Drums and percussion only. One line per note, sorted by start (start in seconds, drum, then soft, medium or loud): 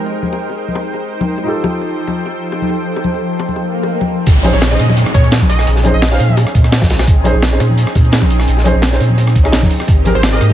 0.06 high bongo soft
0.22 high conga medium
0.33 high bongo medium
0.50 high bongo soft
0.68 high conga medium
0.75 high bongo medium
0.94 high bongo soft
1.21 high bongo medium
1.21 high conga medium
1.38 high bongo medium
1.64 high bongo medium
1.64 high conga medium
1.81 high bongo soft
2.07 high bongo medium
2.07 high conga medium
2.26 high bongo soft
2.52 high bongo medium
2.62 high conga medium
2.69 high bongo medium
2.96 high bongo medium
3.04 high conga medium
3.14 high bongo soft
3.39 high bongo medium
3.49 high conga medium
3.56 high bongo soft
3.83 high bongo medium
4.01 high bongo soft
4.01 high conga medium
4.26 kick loud
4.26 closed hi-hat medium
4.26 closed hi-hat loud
4.26 high bongo medium
4.44 closed hi-hat medium
4.44 high conga loud
4.54 high bongo medium
4.62 snare loud
4.62 closed hi-hat loud
4.62 closed hi-hat medium
4.79 cross-stick soft
4.79 closed hi-hat medium
4.89 high bongo medium
4.89 high conga medium
4.97 closed hi-hat medium
4.97 closed hi-hat loud
5.06 cross-stick soft
5.14 kick loud
5.14 closed hi-hat medium
5.14 high bongo medium
5.24 closed hi-hat soft
5.32 snare loud
5.32 closed hi-hat medium
5.32 closed hi-hat loud
5.42 high conga loud
5.50 closed hi-hat medium
5.50 high bongo medium
5.59 cross-stick medium
5.59 snare soft
5.67 closed hi-hat medium
5.76 snare soft
5.76 high bongo medium
5.84 closed hi-hat medium
5.84 high conga medium
6.02 snare loud
6.02 closed hi-hat medium
6.12 snare medium
6.12 high bongo medium
6.20 closed hi-hat medium
6.20 open hi-hat medium
6.29 high conga medium
6.37 closed hi-hat medium
6.37 high bongo medium
6.46 cross-stick soft
6.46 closed hi-hat soft
6.55 kick loud
6.55 closed hi-hat medium
6.64 cross-stick soft
6.64 closed hi-hat soft
6.72 snare loud
6.72 closed hi-hat medium
6.72 high bongo medium
6.81 kick medium
6.81 snare loud
6.81 closed hi-hat medium
6.81 high conga medium
6.90 snare loud
6.90 closed hi-hat medium
6.99 cross-stick medium
6.99 snare loud
6.99 closed hi-hat medium
6.99 high bongo medium
7.07 kick loud
7.07 closed hi-hat medium
7.24 closed hi-hat medium
7.24 high conga medium
7.34 high bongo medium
7.43 snare loud
7.43 closed hi-hat medium
7.60 cross-stick soft
7.60 closed hi-hat medium
7.60 high bongo medium
7.70 high conga medium
7.78 closed hi-hat medium
7.87 cross-stick soft
7.95 kick loud
7.95 closed hi-hat medium
7.95 high bongo medium
8.05 closed hi-hat soft
8.12 snare loud
8.12 closed hi-hat medium
8.21 high bongo medium
8.21 high conga medium
8.30 closed hi-hat medium
8.39 cross-stick medium
8.39 snare soft
8.48 closed hi-hat medium
8.57 snare soft
8.57 high bongo medium
8.65 closed hi-hat medium
8.65 high conga loud
8.82 snare loud
8.82 closed hi-hat medium
8.82 high bongo medium
8.92 snare soft
9.01 closed hi-hat medium
9.01 open hi-hat medium
9.10 high conga medium
9.18 closed hi-hat medium
9.18 high bongo soft
9.27 cross-stick soft
9.27 closed hi-hat soft
9.36 kick loud
9.36 closed hi-hat medium
9.45 cross-stick soft
9.45 closed hi-hat soft
9.45 high bongo medium
9.53 snare loud
9.53 closed hi-hat medium
9.62 kick medium
9.62 snare soft
9.62 high conga loud
9.69 closed hi-hat medium
9.69 open hi-hat medium
9.80 cross-stick soft
9.80 high bongo medium
9.88 kick loud
9.88 closed hi-hat loud
9.88 closed hi-hat medium
9.88 high bongo medium
10.05 closed hi-hat medium
10.05 high conga medium
10.15 high bongo medium
10.23 snare loud
10.23 closed hi-hat medium
10.41 cross-stick soft
10.41 closed hi-hat medium
10.50 high bongo medium